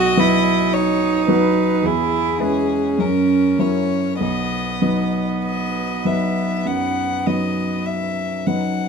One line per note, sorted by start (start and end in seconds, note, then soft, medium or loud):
0.00 0.16 B1 medium
0.00 0.21 F#4 loud
0.00 0.75 D#5 medium
0.17 1.24 F#3 soft
0.17 0.75 E4 medium
0.17 1.24 F#4 soft
0.17 1.24 B4 soft
0.73 1.87 D#4 medium
0.73 1.28 C#5 medium
1.28 1.80 F#3 soft
1.28 1.80 F#4 soft
1.28 1.86 B4 medium
1.28 1.81 B4 medium
1.82 2.39 E2 medium
1.82 2.44 E4 medium
1.82 3.01 G#4 medium
2.39 2.95 G#3 soft
2.39 4.21 C#4 medium
2.39 2.96 E4 soft
2.39 2.96 B4 soft
2.98 3.57 F#2 medium
2.98 3.61 A#4 medium
3.59 4.17 F#3 soft
3.59 4.17 E4 soft
3.59 4.17 A#4 soft
3.59 4.19 C#5 medium
4.20 4.81 B1 medium
4.20 7.82 B3 medium
4.20 5.30 D#5 medium
4.82 6.02 F#3 soft
4.82 6.03 D#4 soft
4.82 6.03 B4 soft
5.44 6.08 D#5 medium
6.05 6.63 F#3 soft
6.05 6.63 D#4 soft
6.05 6.63 B4 soft
6.05 6.68 E5 medium
6.66 7.24 F#2 soft
6.66 7.27 F#5 medium
7.26 8.42 F#3 soft
7.26 8.43 D#4 soft
7.26 8.42 B4 soft
7.26 7.87 D#5 medium
7.86 8.48 E5 medium
8.47 8.89 F#3 soft
8.47 8.89 D#4 soft
8.47 8.89 B4 soft
8.47 8.89 F#5 soft